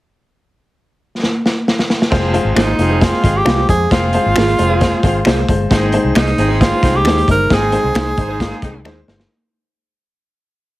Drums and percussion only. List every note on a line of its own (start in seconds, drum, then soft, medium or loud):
1.23 snare medium
1.46 snare medium
1.68 snare medium
1.79 snare medium
1.90 snare medium
2.02 snare medium
2.12 kick loud
2.12 snare loud
2.12 crash medium
2.34 closed hi-hat medium
2.56 finger snap medium
2.56 snare loud
2.56 closed hi-hat medium
2.79 closed hi-hat medium
3.01 kick medium
3.01 snare loud
3.01 closed hi-hat medium
3.24 kick medium
3.24 closed hi-hat medium
3.46 finger snap medium
3.46 snare loud
3.46 closed hi-hat medium
3.69 kick medium
3.69 closed hi-hat medium
3.91 kick loud
3.91 snare loud
3.91 closed hi-hat medium
4.13 closed hi-hat medium
4.36 finger snap medium
4.36 snare loud
4.36 closed hi-hat medium
4.48 closed hi-hat soft
4.59 closed hi-hat medium
4.81 kick medium
4.81 snare loud
4.81 closed hi-hat medium
5.03 kick medium
5.03 closed hi-hat medium
5.25 finger snap medium
5.25 snare loud
5.25 closed hi-hat medium
5.49 kick medium
5.49 closed hi-hat medium
5.71 kick loud
5.71 snare loud
5.71 closed hi-hat medium
5.92 closed hi-hat medium
6.15 finger snap medium
6.15 snare loud
6.15 closed hi-hat medium
6.27 closed hi-hat soft
6.38 closed hi-hat medium
6.61 kick medium
6.61 snare medium
6.61 closed hi-hat medium
6.83 kick medium
6.83 snare soft
6.83 closed hi-hat medium
7.05 finger snap medium
7.05 snare loud
7.05 closed hi-hat medium
7.18 closed hi-hat soft
7.28 kick medium
7.28 closed hi-hat medium
7.50 kick loud
7.50 snare loud
7.50 closed hi-hat medium
7.72 closed hi-hat medium
7.95 finger snap medium
7.95 snare loud
7.95 closed hi-hat medium
8.17 kick medium
8.17 closed hi-hat medium
8.40 kick medium
8.40 snare medium
8.40 closed hi-hat medium
8.62 kick medium
8.62 snare soft
8.62 closed hi-hat medium
8.85 finger snap medium
8.85 snare medium
9.08 snare medium
9.20 snare medium